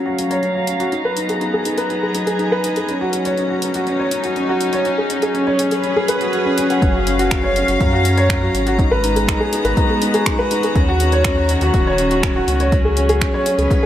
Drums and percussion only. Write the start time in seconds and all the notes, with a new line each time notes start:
0.19 closed hi-hat
0.31 closed hi-hat
0.43 closed hi-hat
0.67 closed hi-hat
0.80 closed hi-hat
0.92 closed hi-hat
1.17 closed hi-hat
1.29 closed hi-hat
1.41 closed hi-hat
1.65 closed hi-hat
1.78 closed hi-hat
1.90 closed hi-hat
2.15 closed hi-hat
2.27 closed hi-hat
2.39 closed hi-hat
2.64 closed hi-hat
2.76 closed hi-hat
2.89 closed hi-hat
3.13 closed hi-hat
3.25 closed hi-hat
3.38 closed hi-hat
3.62 closed hi-hat
3.74 closed hi-hat
3.87 closed hi-hat
4.11 closed hi-hat
4.24 closed hi-hat
4.36 closed hi-hat
4.61 closed hi-hat
4.73 closed hi-hat
4.85 closed hi-hat
5.10 closed hi-hat
5.22 closed hi-hat
5.35 closed hi-hat
5.59 closed hi-hat
5.71 closed hi-hat
5.84 closed hi-hat
6.08 closed hi-hat
6.21 closed hi-hat
6.33 closed hi-hat
6.58 closed hi-hat
6.70 closed hi-hat
6.82 kick, closed hi-hat
7.07 closed hi-hat
7.19 closed hi-hat
7.31 finger snap, kick, closed hi-hat
7.56 closed hi-hat
7.68 closed hi-hat
7.81 kick, closed hi-hat
8.05 closed hi-hat
8.18 closed hi-hat
8.30 finger snap, kick, closed hi-hat
8.55 closed hi-hat
8.67 closed hi-hat
8.79 kick, closed hi-hat
9.04 closed hi-hat
9.16 closed hi-hat
9.28 finger snap, kick, closed hi-hat
9.53 closed hi-hat
9.65 closed hi-hat
9.77 kick, closed hi-hat
10.02 closed hi-hat
10.14 closed hi-hat
10.26 finger snap, kick, closed hi-hat
10.51 closed hi-hat
10.63 closed hi-hat
10.75 kick, closed hi-hat
11.00 closed hi-hat
11.12 closed hi-hat
11.25 finger snap, kick, closed hi-hat
11.49 closed hi-hat
11.61 closed hi-hat
11.74 kick, closed hi-hat
11.98 closed hi-hat
12.11 closed hi-hat
12.23 finger snap, kick
12.48 closed hi-hat
12.60 closed hi-hat
12.72 kick, closed hi-hat
12.97 closed hi-hat
13.09 closed hi-hat
13.21 finger snap, kick, closed hi-hat
13.46 closed hi-hat
13.59 closed hi-hat
13.71 kick, closed hi-hat